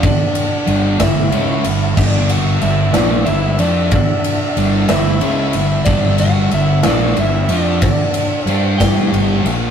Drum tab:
CC |------|x-----|------|------|
RD |xxxxxx|-xxxxx|xxxxxx|xxxxxx|
SD |---o--|---o--|---o--|---o--|
BD |o--o--|o-----|o-----|o-----|

CC |------|
RD |xxxxxx|
SD |---o--|
BD |o--o--|